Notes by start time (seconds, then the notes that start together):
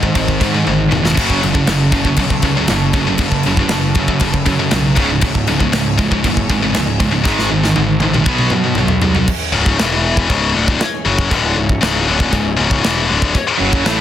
Already playing: G#2 D#3 G#3 C4 G#4 C5
0.03 G#2 D#3, kick
0.15 G#1 G#2 D#3, kick, crash
0.28 kick
0.41 G#2 D#3, kick, crash
0.55 G#2 D#3
0.67 G#1 G#2 D#3, high tom
0.91 E1 G#2 D#3, mid tom
1.05 G#2 D#3, snare
1.17 F#1 F#2 C#3 F#3 A3 C#4 A4 C#5, kick, splash, crash
1.30 kick
1.43 F#1 F#2 C#3, crash
1.54 F#2 C#3, kick
1.67 F#1 F#2 C#3, snare, crash
1.92 F#2 C#3, kick, crash
2.05 F#2 C#3, kick
2.16 B1 F#2 C#3, kick, crash
2.30 kick
2.42 C#2 F#2 C#3, kick, crash
2.57 F#2 C#3
2.68 F#1 F#2 C#3, snare, crash
2.93 F#1 F#2 C#3, kick, crash
3.07 F#2 C#3
3.18 F#1 F#2 C#3 B4, kick, crash
3.32 kick
3.43 F#1 F#2 C#3, crash
3.57 F#2 C#3, kick
3.69 F#1 F#2 C#3, snare, crash
3.95 F#2 C#3, kick, crash
4.08 F#2 C#3, kick
4.19 F#1 F#2 C#3, kick, crash
4.34 kick
4.46 F#2 C#3, kick, crash
4.59 F#2 C#3
4.71 B1 F#2 C#3, snare, crash
4.95 C#1 C#2 G#2 C#3 E3 G#3 G#4 C#5, kick, crash
5.08 C#2 G#2
5.21 C#1 C#2 G#2, kick, crash
5.35 kick
5.47 C#1 C#2 G#2, crash
5.60 C#2 G#2, kick
5.72 C#1 C#2 G#2, snare, crash
5.98 C#2 G#2, kick, crash
6.11 C#2 G#2, kick
6.24 F#1 C#2 G#2, kick, crash
6.37 kick
6.50 G#1 C#2 G#2, kick, crash
6.63 C#2 G#2
6.74 C#1 C#2 G#2, snare, crash
7.00 C#1 C#2 G#2, kick, crash
7.11 C#2 G#2
7.24 G#1 G#2 D#3 G#3 C4 C5, kick, snare
7.39 snare
7.50 G#1 G#2 D#3
7.63 G#2 D#3, snare
7.76 G#1 G#2 D#3, high tom
8.00 A1 G#2 D#3, high tom
8.14 G#2 D#3, mid tom
8.25 B1 B2 F#3 B3 F#4 B4, kick
8.38 mid tom
8.50 B2 F#3, mid tom
8.64 B2 F#3
8.75 B1 B2 F#3, mid tom
8.88 floor tom
9.02 C2 B2 F#3, floor tom
9.15 B2 F#3, floor tom
9.26 E3 G#3 C#4 G#4 C#5, kick, crash, china
9.52 C#1 C#2 G#2 C#3
9.66 kick
9.78 E1 E2 B2 E3 B3 E4 E5, snare, china
10.17 kick
10.27 C#1 C#2 G#2 C#3 E3 G#3 C#4 G#4 C#5, kick, china
10.53 D1 D2 A2 D3
10.68 kick
10.80 muted distorted electric guitar stroke, muted picked electric bass stroke, snare, china
11.05 F#1 F#2 C#3 F#3
11.19 kick
11.30 D1 D2 A2 D3, kick, china
11.55 C#1 C#2 G#2
11.69 kick
11.81 C#1 C#2 G#2 C#3, snare, china
12.06 D1 D2 A2 D3
12.20 kick
12.32 C#1 C#2 G#2, kick, china
12.57 C#1 C#2 G#2 C#3
12.71 kick
12.82 E1 E2 B2 E3, snare, china
13.08 D1 D2 A2 D3
13.22 kick
13.35 kick, china
13.58 F#1 F#2 C#3 F#3 C#4 F#4 F#5
13.73 kick
13.85 A1 A2 E3 A3 E4 E5, snare, china